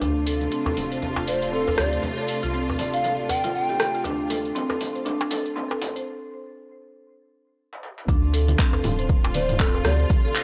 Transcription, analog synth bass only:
0.01 D2
0.77 D1
1.78 D2
2.43 C2
2.79 D1
4.05 D2
4.80 D1
5.81 D2
8.09 D2
8.84 D1
9.85 D2

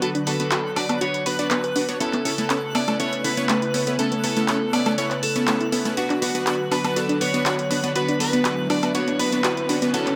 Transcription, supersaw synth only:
0.02 B3 D4 F#4 B4
0.27 B3 D4 F#4 B4
0.40 B3 D4 F#4 B4
0.52 B3 D4 F#4 B4
0.77 B3 D4 F#4 B4
0.89 B3 D4 F#4 B4
1.01 B3 D4 F#4 B4
1.26 B3 D4 F#4 B4
1.39 B3 D4 F#4 D5
1.51 B3 D4 F#4 B4
1.76 B3 D4 F#4 B4
1.89 B3 D4 F#4 C#5
2.01 B3 C#4 E4 A4
2.25 B3 C#4 E4 A4
2.38 B3 C#4 E4 A4
2.50 B3 C#4 E4 A4
2.75 B3 C#4 E4 A4
2.88 B3 C#4 E4 A4
3.00 B3 C#4 E4 A4
3.24 B3 C#4 E4 A4
3.37 B3 C#4 E4 C#5
3.49 B3 C#4 E4 A4
3.74 B3 C#4 E4 A4
3.87 B3 C#4 E4 B4
3.99 B3 C#4 E4 A4
4.24 B3 C#4 E4 A4
4.37 B3 C#4 E4 A4
4.48 B3 C#4 E4 A4
4.73 B3 C#4 E4 A4
4.86 B3 C#4 E4 A4
4.98 B3 C#4 E4 A4
5.36 B3 C#4 E4 A4
5.48 B3 C#4 E4 A4
5.72 B3 C#4 E4 A4
5.85 B3 C#4 E4 A4
5.97 B3 D4 F#4 B4
6.22 B3 D4 F#4 B4
6.35 B3 D4 F#4 B4
6.47 B3 D4 F#4 B4
6.71 B3 D4 F#4 B4
6.84 B3 D4 F#4 B4
6.96 B3 D4 F#4 B4
7.21 B3 D4 F#4 B4
7.34 B3 D4 F#4 B4
7.46 B3 D4 F#4 B4
7.71 B3 D4 F#4 B4
7.83 B3 D4 F#4 B4
7.95 B3 D4 F#4 B4
8.20 B3 D4 F#4 B4
8.33 B3 D4 F#4 B4
8.45 B3 D4 F#4 B4
8.70 B3 D4 F#4 B4
8.83 B3 D4 F#4 B4
8.95 B3 D4 F#4 B4
9.19 B3 D4 F#4 B4
9.32 B3 D4 F#4 B4
9.44 B3 D4 F#4 B4
9.69 B3 D4 F#4 B4
9.82 B3 D4 F#4 B4
9.94 B3 C#4 F#4 B4

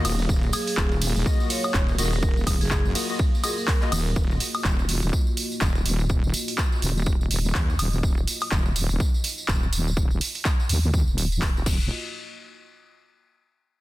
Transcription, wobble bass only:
0.05 D#1
0.29 D#1
0.77 D#1
1.16 D#1
1.74 D#1
1.98 D#1
2.37 D#1
2.47 D#1
2.61 F#1
3.92 D#1
4.16 D#1
4.65 D#1
5.03 D#1
5.61 D#1
5.86 D#1
6.24 D#1
6.82 D#1
7.31 D#1
7.55 D#2
7.79 D#1
8.03 D#1
8.52 D#1
8.90 D#1
9.48 D#1
9.73 D#1
10.11 D#1
10.69 D#2
11.08 D#1
11.42 D#1
11.66 D#1

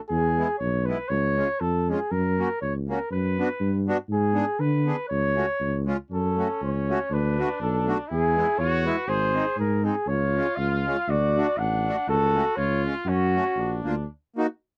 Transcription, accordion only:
0.37 G#3 B3 E4
0.87 G#3 B3 E4
1.37 G#3 C#4 F4
1.89 G#3 C#4 F4
2.38 A#3 C#4 F#4
2.88 A#3 C#4 F#4
3.39 B3 D4 F#4
3.88 B3 D4 F#4
4.33 B3 D4 G#4
4.85 B3 D4 G#4
5.35 A3 C#4 F#4
5.85 G#3 C#4 F4
6.37 A3 C#4 F#4
6.88 A3 C#4 F#4
7.38 A3 D4 F#4
7.86 A3 D4 F#4
8.36 G#3 B3 E4
8.84 G#3 B3 E4
9.33 G#3 C4 D#4
9.82 G#3 C4 D#4
10.35 G#3 C#4 F4
10.86 G#3 C#4 F4
11.36 A3 D4 F#4
11.86 A3 D4 F#4
12.35 A3 C#4 F#4
12.85 G#3 C#4 F4
13.35 A3 C#4 F#4
13.84 A#3 D4 F4
14.36 A#3 D#4 F#4

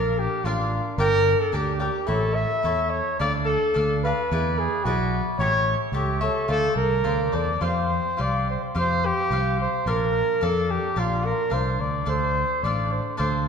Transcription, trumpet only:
Already playing: A#4
0.18 G4
0.45 F4
0.98 A#4
1.40 A4
1.54 G4
1.81 G4
2.07 A4
2.35 E5
2.90 C#5
3.19 D5
3.45 A4
4.03 B4
4.59 G#4
4.84 F#4
5.39 C#5
5.93 G4
6.22 A4
6.51 A4
6.77 A#4
7.35 D5
7.63 C5
8.20 D5
8.50 C5
8.79 C5
9.06 G4
9.61 C5
9.88 A#4
10.43 A4
10.70 G4
10.99 F4
11.25 A#4
11.53 C5
11.80 D5
12.09 C5
12.64 D5
12.92 C5
13.18 C5

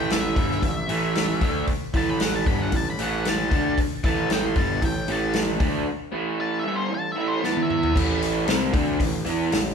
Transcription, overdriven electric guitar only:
Already playing: A2 E3 A3
0.36 G2 D3 G3
0.63 A2 E3
0.89 A2 E3 A3
1.42 D3 A3 D4
1.94 A2 E3 A3
2.46 G2 D3 G3
2.72 A2 E3
2.99 A2 E3 A3
3.51 D3 A3 D4
4.04 A2 E3 A3
4.56 G2 D3 G3
4.82 A2 E3
5.08 A2 E3 A3
5.60 D3 A3 D4
6.12 A2 E3 A3
6.64 G2 D3 G3
6.90 A2 E3
7.16 A2 E3 A3
7.42 E3 B3 E4
7.93 A2 E3 A3
8.47 C3 G3 C4
8.72 D3 A3 D4
9.00 A2 E3
9.25 E3 B3 E4
9.51 A2 E3

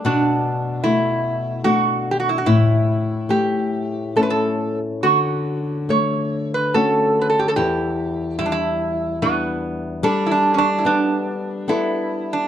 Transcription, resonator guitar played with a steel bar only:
0.06 D4
0.84 E4
1.64 F#4
2.11 G4
2.20 F#4
2.29 E4
2.38 F#4
2.46 E4
3.30 G4
4.17 A4
4.23 B4
4.30 A4
5.03 F#4
5.90 C#5
6.54 B4
6.74 A4
7.21 B4
7.30 A4
7.39 G4
7.48 A4
7.56 G4
8.39 E4
8.46 D4
8.52 E4
9.22 B3
10.04 D4
10.26 E4
10.31 D4
10.54 C#4
10.58 D4
10.78 E4
10.86 D4
11.69 E4
12.33 D4

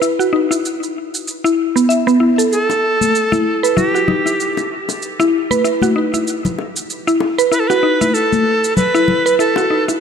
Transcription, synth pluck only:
0.02 E4
0.19 F#4
0.33 D#4
0.51 E4
1.44 E4
1.76 B3
1.89 E5
2.07 B3
2.20 E4
2.38 A4
3.32 E4
3.63 B4
3.77 E4
3.95 F#4
4.08 D#4
4.26 E4
5.20 E4
5.51 B4
5.64 E4
5.82 F#4
5.96 D#4
6.14 E4
7.07 E4
7.38 B4
7.52 E4
7.70 F#4
7.83 D#4
8.01 E4
8.94 E4
9.26 B4
9.39 E4
9.57 F#4
9.70 D#4
9.88 E4

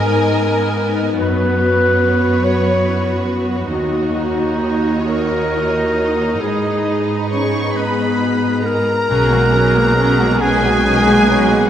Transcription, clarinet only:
Already playing: A#4
1.19 B4
2.44 C#5
4.16 D#4
5.07 A#4
6.41 G#4
9.10 G#4
10.41 G#4

